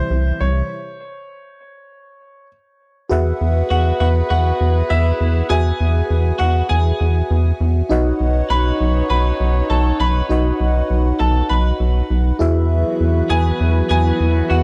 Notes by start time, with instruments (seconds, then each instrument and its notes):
Already playing: analog synth pad C3 E3 G3, fm electric piano E4 G4 C5 E5, grand piano C5
0.11 analog synth bass C2
0.41 analog synth bass C2, grand piano C#5
3.10 analog synth bass E2, horn section B3 F#4 G#4 B4, fm electric piano F#4 G#4 B4 E5 F#5
3.41 analog synth bass E2
3.70 analog synth bass E2, clean electric guitar F#4, grand piano F#5
4.00 analog synth bass E2, clean electric guitar F#4, grand piano F#5
4.30 analog synth bass E2, clean electric guitar F#4, grand piano F#5
4.61 analog synth bass E2
4.90 analog synth bass E2, clean electric guitar E4, grand piano E5
5.21 analog synth bass E2
5.49 analog synth bass E2, fm electric piano F#4 G#4 B4 E5 G#5, clean electric guitar G#4, grand piano G#5
5.81 analog synth bass E2
6.11 analog synth bass E2
6.38 analog synth bass E2, clean electric guitar F#4, grand piano F#5
6.69 analog synth bass E2, clean electric guitar G#4, grand piano G#5
7.01 analog synth bass E2
7.31 analog synth bass E2
7.61 analog synth bass E2
7.89 analog synth bass B1, horn section C#4 D#4 F#4 C#5, fm electric piano D#4 F#4 B4 D#5 F#5
8.20 analog synth bass B1
8.50 analog synth bass B1, clean electric guitar B4, grand piano B5
8.81 analog synth bass B1
9.10 analog synth bass B1, clean electric guitar B4, grand piano B5
9.40 analog synth bass B1
9.70 analog synth bass B1, clean electric guitar A4, grand piano A5
10.00 analog synth bass B1, clean electric guitar B4, grand piano B5
10.29 analog synth bass B1, fm electric piano D#4 F#4 B4 D#5 F#5
10.61 analog synth bass B1
10.90 analog synth bass B1
11.19 analog synth bass B1, clean electric guitar A4, grand piano A5
11.49 analog synth bass B1, clean electric guitar B4, grand piano B5
11.80 analog synth bass B1
12.11 analog synth bass B1
12.39 analog synth bass E2, horn section B3 E4 F#4 B4, fm electric piano E4 F#4 G#4 B4 E5
12.71 analog synth pad E3 F#3 B3 F#4
13.01 analog synth bass E2
13.30 analog synth bass E2, clean electric guitar G#4, grand piano G#5
13.61 analog synth bass E2
13.89 analog synth bass E2, clean electric guitar G#4, grand piano G#5
14.21 analog synth bass E2
14.50 analog synth bass E2, clean electric guitar F#4, grand piano F#5